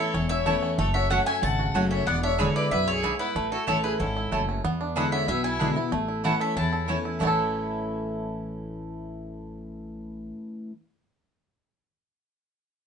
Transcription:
Already playing: steel-string acoustic guitar A2 E3 A3 C#4 E4, five-string banjo A3 A4, mandolin C#5
0.00 five-string banjo E4, fiddle A4
0.14 upright bass E1, steel-string acoustic guitar E2, five-string banjo C#4
0.29 five-string banjo E4, fiddle C#5, mandolin E5
0.46 steel-string acoustic guitar E3 A3 C#4 E4, mandolin A3 E4 C#5 A5, five-string banjo A3
0.62 five-string banjo C#4
0.78 upright bass F#1, steel-string acoustic guitar F#2, five-string banjo A3, fiddle A4, mandolin C#5
0.94 five-string banjo F#4, fiddle C#5, mandolin E5
1.10 steel-string acoustic guitar F#3 A3 C#4 F#4, mandolin A3 F#4 C#5 F#5, five-string banjo A3, fiddle C#5
1.26 five-string banjo C#4, fiddle E5, mandolin G#5
1.42 upright bass G#1, steel-string acoustic guitar C#3, five-string banjo A3, fiddle F#5, mandolin A5
1.59 five-string banjo F#4
1.74 upright bass F#1, steel-string acoustic guitar F#3 A3 C#4 F#4, five-string banjo F#3, mandolin A3 F#4 C#5 F#5
1.91 five-string banjo C#4, fiddle C#5, mandolin E5
2.07 upright bass E1, steel-string acoustic guitar E2, five-string banjo B3, fiddle D5, mandolin F#5
2.23 five-string banjo D4, fiddle C#5, mandolin E5
2.38 steel-string acoustic guitar D3 G#3 B3 E4, mandolin D4 G#4 C#5 E5 B5, five-string banjo E4, fiddle G#4
2.56 five-string banjo E4, fiddle B4, mandolin D5
2.71 upright bass B1, steel-string acoustic guitar F#2, five-string banjo B3, fiddle B4, mandolin E5
2.87 five-string banjo E4, fiddle G#4, mandolin C#5
3.03 steel-string acoustic guitar G#2, mandolin D4 G#4 E5 B5, five-string banjo E4
3.19 five-string banjo B3, fiddle E4, mandolin B4
3.35 upright bass A1, steel-string acoustic guitar A2, five-string banjo A3
3.52 five-string banjo E4, fiddle F#4, mandolin A4
3.67 upright bass A1, steel-string acoustic guitar E3 A3 C#4 E4, mandolin A3 E4 C#5 A5, five-string banjo A4, fiddle A4
3.83 five-string banjo E4, fiddle G#4, mandolin B4
4.00 upright bass G#1, steel-string acoustic guitar G#2, five-string banjo C#4, fiddle E4, mandolin A4
4.17 five-string banjo E4
4.31 upright bass F#1, steel-string acoustic guitar F#2, mandolin A3 E4 C#5 A5, five-string banjo A3
4.49 five-string banjo C#4
4.64 upright bass E2, steel-string acoustic guitar E2, five-string banjo B3
4.81 five-string banjo D4
4.96 steel-string acoustic guitar D3 G#3 B3 E4, mandolin D4 G#4 E5 F#5 B5, fiddle D4, five-string banjo E4
5.12 five-string banjo B3, fiddle C#4, mandolin E5
5.28 upright bass B1, steel-string acoustic guitar B2, fiddle B3, five-string banjo E4, mandolin E5
5.44 five-string banjo E4, fiddle E4, mandolin G#5
5.59 steel-string acoustic guitar D3 G#3 B3 E4, mandolin D4 G#4 E5 B5, five-string banjo E4
5.76 steel-string acoustic guitar B3 E4, five-string banjo E4
5.92 upright bass A1, steel-string acoustic guitar A2, five-string banjo A3
6.08 five-string banjo E4
6.24 steel-string acoustic guitar E3 A3 C#4 E4, mandolin A3 E4 C#5 F#5 A5, five-string banjo A3, fiddle C#4
6.40 fiddle C#4, five-string banjo A4, mandolin E5
6.56 upright bass E2, steel-string acoustic guitar E2, five-string banjo C#4, fiddle E4, mandolin A5
6.73 five-string banjo A4
6.88 steel-string acoustic guitar E3 A3 C#4 E4, mandolin A3 E4 C#5 A5, five-string banjo C#4
7.05 five-string banjo E4
7.19 upright bass A1, steel-string acoustic guitar A2 E3 A3 C#4 E4, mandolin A3 E4 C#5 A5, five-string banjo A3
7.23 five-string banjo C#4 E4 A4

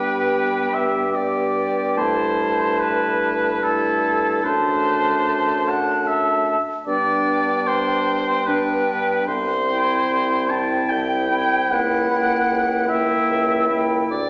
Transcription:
Already playing: bassoon G2, french horn B3, clarinet G4, oboe B4, flute G5
0.74 oboe E5
1.13 french horn B3, clarinet G4, oboe D5, flute G5
1.97 french horn A3, clarinet E4, oboe C5, flute A5
2.81 oboe B4
3.62 french horn A3, clarinet E4, oboe A4, flute A5
4.43 bassoon F#2, french horn A3, clarinet D4, oboe C5, flute A5
5.69 oboe F#5
6.07 oboe E5
6.87 bassoon G2, french horn B3, clarinet D4, oboe D5, flute G5
7.67 oboe C5
8.47 french horn B3, clarinet D4, oboe B4, flute G5
9.27 bassoon C2, oboe C5
9.70 french horn C4, clarinet E4, flute G5
10.11 bassoon C2
10.49 french horn C4, clarinet E4, flute G5, oboe A5
10.89 bassoon C2, oboe G5
11.30 french horn C4, clarinet E4, flute G5
11.70 bassoon C#2, french horn A#3, clarinet E4, oboe F#5, flute G5
12.10 french horn A#3, clarinet E4, flute G5
12.51 bassoon C#2
12.88 french horn A#3, clarinet E4, oboe E5, flute G5
13.30 bassoon C#2
13.69 french horn A#3, clarinet E4, flute G5
14.11 bassoon D2, oboe D5

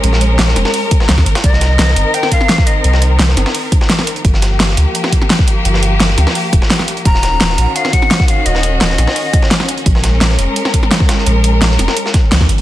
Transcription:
Already playing: string section G#3 C#4 A#4
0.04 sub bass A#1, closed hi-hat
0.13 snare
0.21 closed hi-hat
0.39 sub bass A#1, snare, closed hi-hat
0.48 snare
0.56 sub bass F1, snare, closed hi-hat
0.65 snare
0.74 closed hi-hat, open hi-hat
0.91 kick, closed hi-hat
1.00 snare
1.09 sub bass C#2, snare, closed hi-hat
1.18 sub bass D#2, kick, snare
1.26 sub bass G#1, closed hi-hat
1.35 snare, closed hi-hat
1.44 sub bass C2, string section D#3 C4, flute D#5, kick, closed hi-hat
1.53 snare
1.61 snare, closed hi-hat
1.79 sub bass C2, snare, closed hi-hat
1.88 snare
1.96 sub bass G1, closed hi-hat
2.14 flute G5, closed hi-hat
2.23 snare
2.32 flute F5, kick, closed hi-hat
2.41 snare
2.49 snare, closed hi-hat
2.58 kick, snare
2.67 flute D#5, closed hi-hat
2.84 sub bass C2, closed hi-hat
2.93 snare
3.02 closed hi-hat
3.19 sub bass C2, snare, closed hi-hat
3.28 snare
3.37 sub bass G1, snare, closed hi-hat
3.46 snare
3.54 closed hi-hat, open hi-hat
3.72 kick, closed hi-hat
3.81 snare
3.90 snare, closed hi-hat
3.99 snare
4.07 closed hi-hat
4.16 closed hi-hat
4.25 sub bass G1, string section F3 A#3 G4, kick, closed hi-hat
4.34 snare
4.42 snare, closed hi-hat
4.60 sub bass G1, snare, closed hi-hat
4.69 snare
4.77 sub bass D2, closed hi-hat
4.95 closed hi-hat
5.04 snare
5.12 kick, closed hi-hat
5.22 snare
5.30 snare, closed hi-hat
5.39 kick, snare
5.48 closed hi-hat
5.65 sub bass G1, closed hi-hat
5.74 snare
5.83 closed hi-hat
6.00 sub bass G1, snare, closed hi-hat
6.09 snare
6.18 sub bass D2, snare, closed hi-hat
6.27 snare
6.35 closed hi-hat, open hi-hat
6.53 sub bass D1, kick, closed hi-hat
6.62 snare
6.70 snare, closed hi-hat
6.79 snare
6.88 closed hi-hat
6.97 closed hi-hat
7.05 sub bass D#1, string section D#3 C#4 F#4, flute A#5, kick, closed hi-hat
7.14 snare
7.23 snare, closed hi-hat
7.40 sub bass D#1, snare, closed hi-hat
7.50 snare
7.58 sub bass A#1, closed hi-hat
7.76 flute F5, closed hi-hat
7.85 snare
7.93 flute F#5, kick, closed hi-hat
8.02 snare
8.11 snare, closed hi-hat
8.20 kick, snare
8.28 flute F5, closed hi-hat
8.46 sub bass D#1, flute D#5, closed hi-hat
8.55 snare
8.63 closed hi-hat
8.81 sub bass D#1, flute D#5, snare, closed hi-hat
8.90 snare
8.98 sub bass A#1, snare, closed hi-hat
9.07 snare
9.16 closed hi-hat, open hi-hat
9.33 kick, closed hi-hat
9.42 snare
9.51 snare, closed hi-hat
9.60 snare
9.68 closed hi-hat
9.78 closed hi-hat
9.86 sub bass A#1, string section G#3 A#4, kick, closed hi-hat
9.95 snare
10.04 snare, closed hi-hat
10.21 sub bass A#1, snare, closed hi-hat
10.30 snare
10.39 sub bass F1, closed hi-hat
10.56 closed hi-hat
10.65 snare
10.74 kick, closed hi-hat
10.83 snare
10.91 snare, closed hi-hat
11.00 kick, snare
11.09 snare, closed hi-hat
11.18 snare
11.26 sub bass A#1, closed hi-hat
11.44 closed hi-hat
11.62 sub bass A#1, snare, closed hi-hat
11.71 snare
11.79 sub bass F1, snare, closed hi-hat
11.88 snare
11.97 closed hi-hat
12.06 snare
12.14 kick, snare, closed hi-hat
12.32 sub bass C#2, snare, closed hi-hat
12.41 sub bass D#2, kick, snare
12.49 sub bass G#1, closed hi-hat
12.58 closed hi-hat

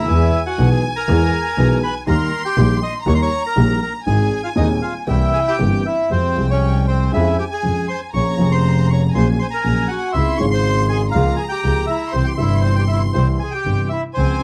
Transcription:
Already playing: bandoneon E4 E5
0.03 grand piano D#2
0.08 grand piano E2 E3 G#3 B3 G#4, double bass E2, violin section G#5
0.46 bandoneon F#4 F#5
0.58 grand piano B1 B2 E3 G#3 B3 G#4, double bass B1
0.71 bandoneon G#4 G#5
0.96 bandoneon A#4 A#5
1.08 double bass E2, grand piano E2 E3 G#3 B3 G#4
1.57 double bass B1, grand piano B1 B2 E3 G#3 B3 G#4
1.83 bandoneon B4 B5
2.07 grand piano D#2 D#3 G3 A#3 G4, double bass D#2, bandoneon A#4 A#5, violin section C6
2.45 bandoneon G4 G5
2.57 double bass A#1, grand piano A#1 A#2 D#3 G3 A#3 G4
2.83 bandoneon D#5 D#6
3.06 grand piano D#2 D#3 G3 A#3 G4, double bass D#2, bandoneon C#5 C#6, violin section A#5
3.15 bandoneon C6
3.22 bandoneon C#5 C#6
3.46 bandoneon A#4 A#5
3.56 grand piano A#1 A#2 D#3 G3 A#3 G4, double bass A#1
3.81 bandoneon A#4 A#5
4.04 grand piano G#1 G#2 D#3 G#3 C4 G#4, double bass G#1, bandoneon G#4 G#5, violin section G#5
4.44 bandoneon F4 F5
4.55 grand piano D#1 D#2 D#3 G#3 C4 G#4, double bass D#2, bandoneon D#4 D#5
4.82 bandoneon F4 F5
5.07 grand piano C2 C3 E3 A#3 C4 G4, double bass C2, bandoneon E4 E5, violin section G5
5.34 bandoneon G#4 G#5
5.48 bandoneon G4 G5
5.59 grand piano G1 G2 E3 A#3 C4 G4, double bass G1
5.86 bandoneon E4 E5
6.10 double bass F2, grand piano F2 F3 G#3 C4 G4, bandoneon C4 C5, violin section G5
6.35 double bass C2, grand piano C2 F3 G3 G#3 G4
6.50 bandoneon C#4 C#5
6.88 bandoneon C4 C5
7.12 grand piano F2 F3 G#3 C#4 G#4, double bass F2, bandoneon E4 E5, violin section G#5
7.38 bandoneon G4 G5
7.51 bandoneon G#4 G#5
7.63 grand piano F2 F3 G#3 C#4 G#4, double bass F2
7.88 bandoneon C5 C6
8.13 grand piano A#1 A#2 F3 A#3 C#4 G#4, double bass A#1, bandoneon C#5 C#6, violin section A#5
8.37 grand piano F1 F2 F3 A#3 C#4 G#4, double bass F1
8.52 bandoneon C5 C6
8.90 bandoneon C#5 C#6
9.13 grand piano A#1 A#2 F#3 A#3 C#4 G#4, double bass A#1, violin section G#5, bandoneon C6
9.17 bandoneon C5
9.39 bandoneon C5 C6
9.51 bandoneon A#4 A#5
9.64 grand piano A#1 A#2 F#3 A#3 C#4 G#4, double bass A#1
9.88 bandoneon F#4 F#5
10.13 grand piano C#2 C#3 G#3 C4 F4, double bass C#2, bandoneon E4 E5, violin section C6
10.37 grand piano G#1 G#2 C#3 G#3 C4, double bass G#1, bandoneon C#5 C#6
10.42 grand piano F4
10.51 bandoneon C5 C6
10.89 bandoneon G#4 G#5
11.11 double bass C#2, grand piano C#2 C#3 F3 A#3 F4, bandoneon F4 F5, violin section A#5
11.36 bandoneon G#4 G#5
11.49 bandoneon G4 G5
11.64 double bass C#2, grand piano C#2 C#3 F3 A#3 F4
11.87 bandoneon E4 E5
12.12 grand piano C2 C3 E3 G3 E4, double bass C2, bandoneon C4 C5, violin section C6
12.24 bandoneon G4 G5
12.37 grand piano G1 G2 C3 E3 G3 E4, double bass G1, bandoneon E5
12.41 bandoneon E4
12.61 bandoneon C4 C5
12.76 bandoneon G4 G5
12.88 bandoneon E4 E5
13.13 grand piano C2 C3 E3 G3 E4, double bass C2, bandoneon C4 C5
13.40 bandoneon G#4 G#5
13.51 bandoneon G4 G5
13.65 double bass G1, grand piano G1 G2 C3 E3 G3 E4
13.89 bandoneon E4 E5
14.14 grand piano C#2 C#3 F3 G#3 F4, double bass C#2, bandoneon C4 C5, violin section G#5

